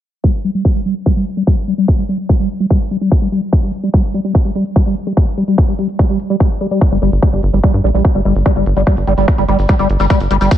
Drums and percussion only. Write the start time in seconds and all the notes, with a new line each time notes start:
0.24 kick, closed hi-hat
0.34 closed hi-hat
0.44 closed hi-hat
0.55 closed hi-hat
0.65 kick, closed hi-hat
0.85 closed hi-hat
0.96 closed hi-hat
1.06 kick, closed hi-hat
1.16 closed hi-hat
1.27 closed hi-hat
1.37 closed hi-hat
1.47 kick, closed hi-hat
1.57 closed hi-hat
1.68 closed hi-hat
1.78 closed hi-hat
1.88 kick, closed hi-hat
1.98 closed hi-hat
2.09 closed hi-hat
2.19 closed hi-hat
2.29 kick, closed hi-hat
2.40 closed hi-hat
2.50 closed hi-hat
2.60 closed hi-hat
2.70 kick, closed hi-hat
2.81 closed hi-hat
2.91 closed hi-hat
3.01 closed hi-hat
3.11 kick, closed hi-hat
3.22 closed hi-hat
3.32 closed hi-hat
3.42 closed hi-hat
3.53 kick, closed hi-hat
3.63 closed hi-hat
3.73 closed hi-hat
3.83 closed hi-hat
3.94 kick, closed hi-hat
4.04 closed hi-hat
4.14 closed hi-hat
4.25 closed hi-hat
4.35 kick, closed hi-hat
4.45 closed hi-hat
4.55 closed hi-hat
4.66 closed hi-hat
4.76 kick, closed hi-hat
4.86 closed hi-hat
4.96 closed hi-hat
5.07 closed hi-hat
5.17 kick, closed hi-hat
5.27 closed hi-hat
5.38 closed hi-hat
5.48 closed hi-hat
5.58 kick, closed hi-hat
5.68 closed hi-hat
5.79 closed hi-hat
5.89 closed hi-hat
5.99 kick, closed hi-hat
6.09 closed hi-hat
6.20 closed hi-hat
6.30 closed hi-hat
6.40 kick, closed hi-hat
6.51 closed hi-hat
6.61 closed hi-hat
6.71 closed hi-hat
6.81 kick, closed hi-hat, shaker
6.91 closed hi-hat, shaker
7.02 closed hi-hat
7.12 closed hi-hat, shaker
7.22 kick, closed hi-hat, shaker
7.33 closed hi-hat, shaker
7.43 closed hi-hat
7.53 closed hi-hat, shaker
7.63 kick, closed hi-hat, shaker
7.74 closed hi-hat, shaker
7.84 closed hi-hat
7.94 closed hi-hat, shaker
8.04 kick, closed hi-hat, shaker
8.15 closed hi-hat, shaker
8.25 closed hi-hat
8.35 closed hi-hat, shaker
8.45 kick, closed hi-hat, shaker
8.56 closed hi-hat, shaker
8.66 closed hi-hat
8.76 closed hi-hat, shaker
8.86 kick, closed hi-hat, shaker
8.97 closed hi-hat, shaker
9.07 closed hi-hat
9.17 closed hi-hat, shaker
9.28 kick, closed hi-hat, shaker
9.38 closed hi-hat, shaker
9.48 closed hi-hat
9.59 closed hi-hat, shaker
9.68 kick, closed hi-hat, shaker
9.79 closed hi-hat, shaker
9.90 closed hi-hat
10.00 closed hi-hat, shaker
10.10 kick, closed hi-hat, shaker
10.20 closed hi-hat, shaker
10.31 closed hi-hat
10.41 closed hi-hat, shaker
10.51 kick, closed hi-hat, shaker